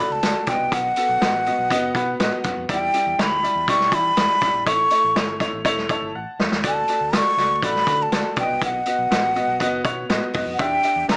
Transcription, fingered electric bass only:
0, 0, Header, 1, 2, 480
1, 0, Start_track
1, 0, Tempo, 493827
1, 699, Time_signature, 4, 2, 24, 8
1, 10855, End_track
2, 0, Start_track
2, 0, Title_t, "Fingered electric bass"
2, 0, Program_c, 0, 33
2, 101, Note_on_c, 0, 37, 80
2, 192, Note_off_c, 0, 37, 0
2, 224, Note_on_c, 0, 38, 82
2, 314, Note_off_c, 0, 38, 0
2, 457, Note_on_c, 0, 35, 93
2, 549, Note_off_c, 0, 35, 0
2, 583, Note_on_c, 0, 36, 78
2, 673, Note_off_c, 0, 36, 0
2, 701, Note_on_c, 0, 35, 93
2, 882, Note_off_c, 0, 35, 0
2, 1062, Note_on_c, 0, 35, 85
2, 1151, Note_off_c, 0, 35, 0
2, 1181, Note_on_c, 0, 33, 78
2, 1453, Note_off_c, 0, 33, 0
2, 1539, Note_on_c, 0, 35, 71
2, 1630, Note_off_c, 0, 35, 0
2, 1658, Note_on_c, 0, 30, 83
2, 1840, Note_off_c, 0, 30, 0
2, 1891, Note_on_c, 0, 47, 90
2, 2076, Note_off_c, 0, 47, 0
2, 2135, Note_on_c, 0, 45, 89
2, 2227, Note_off_c, 0, 45, 0
2, 2376, Note_on_c, 0, 42, 79
2, 2467, Note_off_c, 0, 42, 0
2, 2498, Note_on_c, 0, 41, 80
2, 2588, Note_off_c, 0, 41, 0
2, 2615, Note_on_c, 0, 40, 88
2, 2798, Note_off_c, 0, 40, 0
2, 2980, Note_on_c, 0, 40, 91
2, 3069, Note_off_c, 0, 40, 0
2, 3095, Note_on_c, 0, 38, 82
2, 3368, Note_off_c, 0, 38, 0
2, 3455, Note_on_c, 0, 40, 80
2, 3546, Note_off_c, 0, 40, 0
2, 3574, Note_on_c, 0, 35, 89
2, 3808, Note_on_c, 0, 52, 91
2, 3822, Note_off_c, 0, 35, 0
2, 3992, Note_off_c, 0, 52, 0
2, 4053, Note_on_c, 0, 40, 85
2, 4145, Note_off_c, 0, 40, 0
2, 4294, Note_on_c, 0, 35, 86
2, 4385, Note_off_c, 0, 35, 0
2, 4410, Note_on_c, 0, 34, 94
2, 4502, Note_off_c, 0, 34, 0
2, 4532, Note_on_c, 0, 33, 92
2, 4715, Note_off_c, 0, 33, 0
2, 4902, Note_on_c, 0, 33, 81
2, 4990, Note_off_c, 0, 33, 0
2, 5016, Note_on_c, 0, 31, 78
2, 5288, Note_off_c, 0, 31, 0
2, 5374, Note_on_c, 0, 33, 68
2, 5465, Note_off_c, 0, 33, 0
2, 5493, Note_on_c, 0, 28, 87
2, 5766, Note_off_c, 0, 28, 0
2, 5853, Note_on_c, 0, 31, 79
2, 5944, Note_off_c, 0, 31, 0
2, 5977, Note_on_c, 0, 33, 91
2, 6067, Note_off_c, 0, 33, 0
2, 6213, Note_on_c, 0, 40, 81
2, 6304, Note_off_c, 0, 40, 0
2, 6338, Note_on_c, 0, 39, 76
2, 6427, Note_off_c, 0, 39, 0
2, 6450, Note_on_c, 0, 38, 88
2, 6634, Note_off_c, 0, 38, 0
2, 6811, Note_on_c, 0, 38, 84
2, 6994, Note_off_c, 0, 38, 0
2, 7166, Note_on_c, 0, 37, 73
2, 7260, Note_off_c, 0, 37, 0
2, 7292, Note_on_c, 0, 38, 83
2, 7384, Note_off_c, 0, 38, 0
2, 7409, Note_on_c, 0, 33, 87
2, 7593, Note_off_c, 0, 33, 0
2, 7647, Note_on_c, 0, 50, 94
2, 7832, Note_off_c, 0, 50, 0
2, 7890, Note_on_c, 0, 38, 90
2, 7983, Note_off_c, 0, 38, 0
2, 8132, Note_on_c, 0, 35, 88
2, 8224, Note_off_c, 0, 35, 0
2, 8257, Note_on_c, 0, 36, 81
2, 8347, Note_off_c, 0, 36, 0
2, 8374, Note_on_c, 0, 35, 89
2, 8557, Note_off_c, 0, 35, 0
2, 8734, Note_on_c, 0, 35, 83
2, 8825, Note_off_c, 0, 35, 0
2, 8851, Note_on_c, 0, 33, 81
2, 9127, Note_off_c, 0, 33, 0
2, 9210, Note_on_c, 0, 35, 74
2, 9303, Note_off_c, 0, 35, 0
2, 9336, Note_on_c, 0, 30, 80
2, 9519, Note_off_c, 0, 30, 0
2, 9569, Note_on_c, 0, 47, 95
2, 9754, Note_off_c, 0, 47, 0
2, 9813, Note_on_c, 0, 45, 87
2, 9906, Note_off_c, 0, 45, 0
2, 10054, Note_on_c, 0, 42, 84
2, 10146, Note_off_c, 0, 42, 0
2, 10167, Note_on_c, 0, 41, 83
2, 10262, Note_off_c, 0, 41, 0
2, 10299, Note_on_c, 0, 40, 90
2, 10481, Note_off_c, 0, 40, 0
2, 10653, Note_on_c, 0, 40, 88
2, 10747, Note_off_c, 0, 40, 0
2, 10774, Note_on_c, 0, 38, 78
2, 10855, Note_off_c, 0, 38, 0
2, 10855, End_track
0, 0, End_of_file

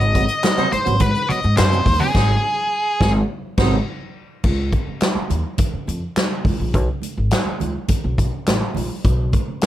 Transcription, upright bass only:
0, 0, Header, 1, 3, 480
1, 0, Start_track
1, 0, Tempo, 574163
1, 1797, Time_signature, 4, 2, 24, 8
1, 8076, End_track
2, 0, Start_track
2, 0, Title_t, "Upright bass"
2, 0, Program_c, 0, 32
2, 0, Note_on_c, 0, 32, 101
2, 199, Note_off_c, 0, 32, 0
2, 726, Note_on_c, 0, 32, 89
2, 828, Note_off_c, 0, 32, 0
2, 843, Note_on_c, 0, 44, 91
2, 946, Note_off_c, 0, 44, 0
2, 1206, Note_on_c, 0, 44, 97
2, 1307, Note_off_c, 0, 44, 0
2, 1324, Note_on_c, 0, 42, 92
2, 1529, Note_off_c, 0, 42, 0
2, 1554, Note_on_c, 0, 39, 90
2, 1659, Note_off_c, 0, 39, 0
2, 1796, Note_on_c, 0, 32, 105
2, 1959, Note_off_c, 0, 32, 0
2, 2515, Note_on_c, 0, 32, 107
2, 2677, Note_off_c, 0, 32, 0
2, 2992, Note_on_c, 0, 32, 109
2, 3155, Note_off_c, 0, 32, 0
2, 3713, Note_on_c, 0, 37, 91
2, 3921, Note_off_c, 0, 37, 0
2, 4432, Note_on_c, 0, 39, 82
2, 4536, Note_off_c, 0, 39, 0
2, 4914, Note_on_c, 0, 41, 91
2, 5017, Note_off_c, 0, 41, 0
2, 5392, Note_on_c, 0, 37, 75
2, 5497, Note_off_c, 0, 37, 0
2, 5516, Note_on_c, 0, 34, 78
2, 5637, Note_off_c, 0, 34, 0
2, 5637, Note_on_c, 0, 35, 90
2, 5740, Note_off_c, 0, 35, 0
2, 5998, Note_on_c, 0, 32, 83
2, 6101, Note_off_c, 0, 32, 0
2, 6361, Note_on_c, 0, 37, 71
2, 6464, Note_off_c, 0, 37, 0
2, 6723, Note_on_c, 0, 35, 74
2, 6929, Note_off_c, 0, 35, 0
2, 7084, Note_on_c, 0, 33, 85
2, 7187, Note_off_c, 0, 33, 0
2, 7322, Note_on_c, 0, 34, 80
2, 7426, Note_off_c, 0, 34, 0
2, 7562, Note_on_c, 0, 35, 91
2, 7771, Note_off_c, 0, 35, 0
2, 8076, End_track
3, 0, Start_track
3, 0, Title_t, "Muted upright bass strokes"
3, 606, Note_on_c, 9, 29, 46
3, 690, Note_off_c, 9, 29, 0
3, 1086, Note_on_c, 9, 29, 49
3, 1170, Note_off_c, 9, 29, 0
3, 4076, Note_on_c, 9, 29, 48
3, 4159, Note_off_c, 9, 29, 0
3, 4315, Note_on_c, 9, 29, 45
3, 4398, Note_off_c, 9, 29, 0
3, 4793, Note_on_c, 9, 29, 45
3, 4876, Note_off_c, 9, 29, 0
3, 6240, Note_on_c, 9, 29, 45
3, 6323, Note_off_c, 9, 29, 0
3, 6599, Note_on_c, 9, 29, 44
3, 6683, Note_off_c, 9, 29, 0
3, 7926, Note_on_c, 9, 29, 47
3, 8010, Note_off_c, 9, 29, 0
3, 8076, End_track
0, 0, End_of_file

